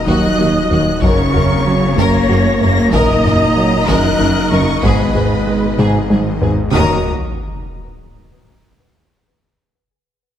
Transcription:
0.00 1.04 D#1 medium
0.00 0.99 F#3 medium
0.00 0.99 D#4 medium
0.00 0.99 D#5 medium
0.07 0.27 D#2 loud
0.07 0.16 D#2 medium
0.07 0.26 D#3 loud
0.07 0.69 F#3 medium
0.07 0.37 F#4 medium
0.07 1.03 D#5 medium
0.07 0.70 F#6 loud
0.07 taiko medium
0.39 0.48 D#2 medium
0.39 0.59 D#2 medium
0.39 0.58 D#4 medium
0.39 0.48 F#4 medium
0.71 0.79 D#2 medium
0.71 0.90 D#2 medium
0.71 1.02 F#3 medium
0.71 0.90 F#3 medium
0.71 0.80 F#4 medium
0.71 1.02 F#6 loud
0.71 taiko low medium
1.02 4.85 F#1 medium
1.02 1.11 F#1 medium
1.02 1.22 F#2 loud
1.02 1.96 C#3 loud
1.02 1.21 F#3 medium
1.02 4.80 A#3 medium
1.02 2.89 C#4 medium
1.02 1.33 A#4 medium
1.02 1.34 C#5 medium
1.02 2.94 C#5 medium
1.02 1.96 C#6 loud
1.02 taiko loud
1.34 1.42 F#1 medium
1.34 1.54 F#2 medium
1.34 1.53 F#4 medium
1.34 1.43 A#4 medium
1.34 1.66 A#4 medium
1.34 taiko low medium
1.66 1.85 F#3 medium
1.66 2.93 C#5 medium
1.97 2.06 F#1 loud
1.97 2.17 F#2 loud
1.97 2.16 F#3 loud
1.97 2.60 A#3 loud
1.97 2.28 A#4 loud
1.97 2.60 A#6 loud
1.97 taiko medium
2.29 2.38 F#1 medium
2.29 2.49 F#2 medium
2.29 2.48 F#4 medium
2.29 2.39 A#4 medium
2.61 2.70 F#1 medium
2.61 2.81 F#2 medium
2.61 2.92 A#3 loud
2.61 2.80 A#3 medium
2.61 2.70 A#4 medium
2.61 2.93 A#6 loud
2.61 taiko low medium
2.93 3.02 F#1 loud
2.93 3.13 F#2 loud
2.93 3.89 A#2 loud
2.93 3.12 D#3 loud
2.93 6.39 D#4 medium
2.93 3.23 A#4 loud
2.93 6.50 D#5 medium
2.93 3.87 D#5 loud
2.93 3.87 A#5 loud
2.93 taiko loud
3.25 3.34 F#1 medium
3.25 3.44 F#2 medium
3.25 3.44 D#4 medium
3.25 3.34 A#4 medium
3.25 taiko low medium
3.57 3.76 F#3 medium
3.88 3.97 F#1 loud
3.88 4.08 F#2 loud
3.88 4.07 D#3 loud
3.88 4.52 F#3 loud
3.88 4.84 A#4 loud
3.88 4.18 A#4 medium
3.88 4.52 F#6 loud
3.88 taiko medium
4.20 4.30 F#1 medium
4.20 4.39 F#2 medium
4.20 4.39 D#4 medium
4.20 4.28 A#4 medium
4.52 4.61 F#1 medium
4.52 4.71 F#2 medium
4.52 4.84 C#3 loud
4.52 4.71 F#3 medium
4.52 4.60 A#4 medium
4.52 4.83 C#6 loud
4.52 taiko low medium
4.83 6.73 G#1 medium
4.83 4.92 G#1 medium
4.83 5.03 G#2 loud
4.83 5.77 B2 medium
4.83 5.02 G#3 loud
4.83 6.40 G#3 medium
4.83 5.13 G#4 medium
4.83 6.27 B4 medium
4.83 5.79 B5 medium
4.83 taiko loud
5.15 5.24 G#1 medium
5.15 5.35 G#2 medium
5.15 5.34 G#4 medium
5.15 5.24 G#4 medium
5.15 taiko low medium
5.47 5.66 G#3 medium
5.79 5.88 G#1 medium
5.79 5.98 G#2 loud
5.79 5.98 G#3 loud
5.79 6.09 G#4 medium
5.79 taiko mid medium
6.10 6.19 G#1 medium
6.10 6.29 G#2 medium
6.10 6.29 G#4 medium
6.10 6.19 G#4 medium
6.10 taiko high medium
6.42 6.51 G#1 medium
6.42 6.61 G#2 medium
6.42 6.61 B3 medium
6.42 6.51 G#4 medium
6.42 taiko low loud
6.73 7.10 D#1 loud
6.73 7.10 D#2 loud
6.73 7.10 D#3 medium
6.73 7.02 F#3 medium
6.73 7.10 A#3 medium
6.73 7.02 D#4 medium
6.73 7.10 F#4 medium
6.73 7.10 A#4 medium
6.73 7.10 A#5 medium
6.73 7.09 D#6 loud
6.73 taiko low medium
6.73 sub drop medium

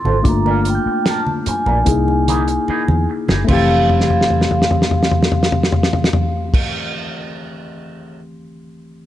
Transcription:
0.00 0.20 C4 medium
0.00 0.20 E4 medium
0.00 0.21 F4 medium
0.00 0.22 A4 medium
0.00 0.32 C6 loud
0.00 0.43 A6 medium
0.05 0.22 G#1 medium
0.05 0.16 A3 soft
0.05 0.16 C4 medium
0.05 0.16 F4 medium
0.05 0.16 A4 medium
0.05 high conga medium
0.23 0.77 G1 loud
0.23 1.82 A#3 medium
0.23 1.83 D4 medium
0.23 1.84 F4 medium
0.23 2.05 D6 medium
0.23 muted clean electric guitar stroke soft
0.23 kick loud
0.23 closed hi-hat medium
0.23 muted conga soft
0.23 low conga medium
0.27 1.85 A3 medium
0.27 0.46 A#5 loud
0.46 0.60 A#3 medium
0.46 0.60 D4 medium
0.46 0.60 F4 medium
0.46 0.59 A#4 medium
0.46 muted conga soft
0.51 2.28 F6 medium
0.65 muted clean electric guitar stroke soft
0.65 closed hi-hat medium
0.70 1.09 G5 medium
0.75 2.50 G6 medium
0.86 muted fingered electric bass stroke soft
0.86 muted clean electric guitar stroke soft
1.06 1.20 A#3 medium
1.06 1.20 D4 medium
1.06 1.20 F4 medium
1.06 1.21 A#4 medium
1.06 snare loud
1.06 closed hi-hat medium
1.06 muted conga soft
1.10 1.27 A5 medium
1.27 muted conga soft
1.27 high conga medium
1.46 3.06 G#5 medium
1.46 muted fingered electric bass stroke soft
1.46 muted clean electric guitar stroke soft
1.46 closed hi-hat medium
1.46 low conga medium
1.66 1.84 A#1 medium
1.66 1.78 A#3 soft
1.66 1.78 D4 soft
1.66 1.78 F4 soft
1.66 1.77 A#4 medium
1.66 low conga medium
1.85 2.57 C2 loud
1.85 3.45 A#3 medium
1.85 3.45 D#4 medium
1.85 3.46 E4 medium
1.85 3.46 G#4 medium
1.85 muted clean electric guitar stroke soft
1.85 kick medium
1.85 closed hi-hat medium
1.85 muted conga soft
2.08 muted clean electric guitar stroke soft
2.08 muted conga soft
2.28 2.41 E3 medium
2.28 2.42 A#3 medium
2.28 2.42 D#4 medium
2.28 2.42 G#4 medium
2.28 closed hi-hat medium
2.28 high conga medium
2.48 muted clean electric guitar stroke soft
2.48 closed hi-hat soft
2.68 2.82 E3 medium
2.68 2.82 A#3 medium
2.68 2.82 D#4 medium
2.68 2.83 G#4 medium
2.68 muted fingered electric bass stroke soft
2.68 muted conga soft
2.88 3.06 E2 medium
2.88 muted conga soft
2.88 high conga medium
3.09 muted clean electric guitar stroke soft
3.28 3.46 F#1 medium
3.28 3.40 E3 soft
3.28 3.40 A#3 medium
3.28 3.40 D#4 medium
3.28 3.39 G#4 medium
3.28 snare medium
3.28 high conga medium
3.44 6.98 G3 medium
3.44 6.63 A3 medium
3.44 6.64 C4 medium
3.44 crash loud
3.49 6.65 F1 medium
3.49 6.65 E3 medium
3.49 7.00 C4 medium
3.49 7.02 E4 medium
3.49 6.67 G4 medium
3.49 6.65 F5 medium
3.49 6.65 C6 medium
3.49 kick loud
3.49 high conga medium
3.53 7.03 A4 medium
3.89 floor tom soft
4.00 snare soft
4.10 floor tom soft
4.21 snare medium
4.30 floor tom medium
4.41 snare medium
4.51 floor tom medium
4.62 snare medium
4.71 floor tom medium
4.82 snare medium
4.91 floor tom medium
5.03 snare medium
5.11 floor tom medium
5.23 snare medium
5.32 floor tom medium
5.43 snare medium
5.52 floor tom medium
5.63 snare medium
5.72 floor tom medium
5.83 snare medium
5.93 floor tom medium
6.04 snare medium
6.13 floor tom medium
6.54 kick loud
6.54 crash loud

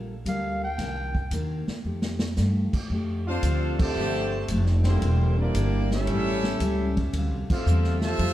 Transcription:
0.00 0.24 A#1 medium
0.00 0.12 G3 medium
0.00 0.12 A#3 medium
0.00 0.12 F4 medium
0.00 0.12 A4 medium
0.26 0.77 D2 medium
0.26 0.64 G3 medium
0.26 0.64 A#3 medium
0.26 0.65 F4 medium
0.26 0.65 A4 medium
0.26 0.61 F5 medium
0.26 kick soft
0.26 hi-hat pedal soft
0.26 ride medium
0.64 1.28 G5 loud
0.78 1.30 C2 medium
0.78 1.17 C3 medium
0.78 1.17 D#3 soft
0.78 1.18 A#3 medium
0.78 1.18 D4 medium
0.78 kick soft
0.78 snare soft
0.78 ride medium
1.15 kick medium
1.31 1.65 D#2 medium
1.31 1.70 C3 medium
1.31 1.70 D#3 medium
1.31 1.70 A#3 medium
1.31 1.70 D4 medium
1.31 kick soft
1.31 hi-hat pedal medium
1.31 ride medium
1.68 muted upright bass stroke soft
1.68 snare medium
1.84 2.36 F2 medium
1.84 2.23 F3 medium
1.84 2.23 A3 medium
1.84 2.24 D#4 medium
1.84 2.24 G4 medium
2.02 snare medium
2.19 snare medium
2.36 2.72 G2 medium
2.36 2.76 F3 medium
2.36 2.76 A3 medium
2.36 2.76 D#4 medium
2.36 2.76 G4 medium
2.36 snare medium
2.36 hi-hat pedal medium
2.73 muted upright bass stroke soft
2.73 kick medium
2.73 crash medium
2.90 3.42 F2 medium
2.90 3.29 F3 medium
2.90 3.29 A3 medium
2.90 3.30 D4 medium
2.90 3.30 G4 medium
2.90 kick soft
3.27 3.76 C4 medium
3.27 3.76 D4 medium
3.27 3.77 D4 medium
3.27 3.76 F4 medium
3.27 3.77 A4 medium
3.27 3.77 C5 medium
3.27 3.77 F5 loud
3.43 3.94 D2 loud
3.43 3.82 F3 medium
3.43 3.82 A3 medium
3.43 3.82 D4 medium
3.43 3.83 G4 medium
3.43 kick soft
3.43 hi-hat pedal medium
3.43 ride medium
3.79 4.45 C3 loud
3.79 4.45 D3 loud
3.79 4.45 A3 loud
3.79 4.46 G4 loud
3.79 4.46 C5 loud
3.79 4.46 D5 loud
3.79 4.46 A5 loud
3.79 kick loud
3.79 crash medium
3.96 4.47 G1 medium
3.96 4.35 F3 soft
3.96 4.35 A3 soft
3.96 4.35 D4 medium
3.96 4.36 G4 medium
4.48 5.00 F1 loud
4.48 4.88 F3 medium
4.48 4.88 A3 medium
4.48 4.88 D4 medium
4.48 4.88 G4 medium
4.48 kick soft
4.48 hi-hat pedal medium
4.48 ride medium
4.66 snare soft
4.83 5.34 D3 medium
4.83 5.35 G3 medium
4.83 5.36 A#3 medium
4.83 5.35 C4 medium
4.83 5.36 E4 medium
4.83 5.35 G4 medium
4.83 5.36 C5 medium
4.83 snare medium
4.83 ride medium
5.02 5.53 E1 loud
5.02 5.41 E3 medium
5.02 5.41 A#3 medium
5.02 5.42 D4 medium
5.02 5.42 G4 medium
5.02 kick soft
5.02 ride medium
5.38 5.91 G3 medium
5.38 5.91 A#3 medium
5.38 5.92 A#3 loud
5.38 5.91 D4 medium
5.38 5.92 E4 medium
5.38 5.93 G4 medium
5.38 5.93 D5 loud
5.54 6.06 G1 loud
5.54 5.93 E3 medium
5.54 5.94 A#3 medium
5.54 5.94 D4 medium
5.54 5.94 G4 medium
5.54 kick soft
5.54 hi-hat pedal medium
5.54 ride medium
5.91 6.94 G3 loud
5.91 6.94 C#4 loud
5.91 6.95 C#4 loud
5.91 6.94 E4 loud
5.91 6.95 G4 loud
5.91 6.95 A4 loud
5.91 6.94 E5 loud
5.91 snare medium
6.07 6.59 A1 loud
6.07 6.47 A2 soft
6.07 6.47 G3 medium
6.07 6.48 C#4 medium
6.07 kick soft
6.07 ride medium
6.12 6.48 E4 medium
6.44 snare medium
6.60 7.12 C#2 loud
6.60 6.99 A2 medium
6.60 7.00 G3 medium
6.60 7.00 C#4 medium
6.60 7.00 E4 medium
6.60 kick soft
6.60 hi-hat pedal medium
6.60 ride medium
6.97 kick medium
6.97 ride medium
7.13 7.31 D2 loud
7.13 7.53 D3 medium
7.13 7.53 G3 medium
7.13 7.54 C4 medium
7.13 kick soft
7.13 ride medium
7.17 7.54 F4 medium
7.31 7.48 C2 medium
7.48 7.65 A1 medium
7.48 8.00 A3 medium
7.48 8.00 C4 medium
7.48 8.00 F4 medium
7.48 8.01 A4 medium
7.48 8.00 E5 medium
7.48 kick medium
7.48 crash medium
7.52 8.01 F5 medium
7.66 8.18 E2 loud
7.66 8.06 D3 medium
7.66 8.06 G3 medium
7.66 8.06 C4 medium
7.66 8.06 F4 medium
7.66 hi-hat pedal medium
7.84 snare soft
8.01 8.33 C3 loud
8.01 8.33 F3 loud
8.01 8.33 A3 loud
8.01 snare medium
8.05 8.33 F4 loud
8.05 8.33 C5 loud
8.05 8.33 E5 loud
8.05 8.33 A5 loud
8.19 8.33 F2 loud
8.19 8.33 D3 soft
8.19 8.33 G3 medium
8.19 8.33 C4 medium
8.19 8.33 F4 medium
8.19 kick soft
8.19 ride medium

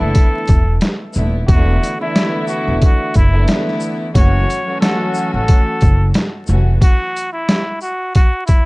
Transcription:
0.00 0.13 F#1 medium
0.00 1.02 D3 loud
0.00 1.02 E3 loud
0.00 1.02 A3 loud
0.00 1.02 B3 loud
0.00 1.02 E4 loud
0.00 0.78 A4 medium
0.15 kick medium
0.15 closed hi-hat medium
0.48 0.77 E1 loud
0.48 kick medium
0.48 closed hi-hat medium
0.48 shaker medium
0.81 snare loud
0.81 closed hi-hat medium
1.13 1.44 D#1 medium
1.13 1.46 D3 medium
1.13 1.46 E3 medium
1.13 1.46 A3 medium
1.13 1.46 B3 medium
1.13 1.46 E4 medium
1.13 shaker medium
1.48 1.77 E1 loud
1.48 1.96 D3 loud
1.48 1.96 E3 medium
1.48 1.96 A3 medium
1.48 1.96 B3 medium
1.48 1.96 E4 loud
1.48 1.97 F#4 loud
1.48 kick loud
1.48 closed hi-hat medium
1.83 closed hi-hat medium
1.83 shaker medium
2.00 3.21 D3 loud
2.00 3.22 E3 loud
2.00 3.22 A3 medium
2.00 3.22 B3 medium
2.00 3.22 E4 loud
2.00 2.46 E4 medium
2.16 snare loud
2.16 closed hi-hat medium
2.48 2.78 F#4 medium
2.48 shaker soft
2.67 2.80 E1 medium
2.82 3.13 F#4 medium
2.82 kick medium
2.82 closed hi-hat medium
3.14 3.44 F#1 loud
3.14 3.46 E4 loud
3.14 kick medium
3.14 closed hi-hat medium
3.14 shaker medium
3.33 4.09 D3 loud
3.33 4.09 E3 loud
3.33 4.09 A3 loud
3.33 4.09 B3 loud
3.33 4.10 E4 loud
3.48 snare loud
3.48 closed hi-hat medium
3.67 snare soft
3.80 shaker medium
4.14 4.43 F#1 loud
4.14 4.62 E3 loud
4.14 4.62 F#3 loud
4.14 4.62 A3 medium
4.14 4.62 C#4 medium
4.14 4.63 F#4 loud
4.14 4.79 C#5 loud
4.14 kick loud
4.14 closed hi-hat loud
4.50 closed hi-hat medium
4.50 shaker medium
4.66 6.35 E3 loud
4.66 6.35 F#3 loud
4.66 6.35 A3 loud
4.66 6.35 C#4 loud
4.66 6.35 F#4 loud
4.81 5.30 A4 medium
4.81 snare loud
4.81 closed hi-hat medium
5.14 shaker medium
5.34 5.46 A1 medium
5.34 6.12 A4 medium
5.48 kick loud
5.48 closed hi-hat medium
5.81 6.10 F#1 medium
5.81 kick medium
5.81 closed hi-hat medium
5.81 shaker medium
6.14 snare loud
6.14 closed hi-hat medium
6.47 6.77 F1 loud
6.47 6.79 E3 medium
6.47 6.79 F#3 medium
6.47 6.79 A3 medium
6.47 6.79 C#4 medium
6.47 6.80 F#4 medium
6.47 shaker medium
6.82 7.31 F#4 loud
6.82 kick loud
6.82 closed hi-hat medium
7.17 closed hi-hat medium
7.17 shaker medium
7.33 7.79 E4 medium
7.49 snare loud
7.49 closed hi-hat medium
7.81 8.12 F#4 medium
7.81 shaker soft
8.15 8.45 F#4 loud
8.15 kick medium
8.15 closed hi-hat medium
8.47 8.65 E4 medium
8.47 kick medium
8.47 closed hi-hat medium
8.47 shaker medium

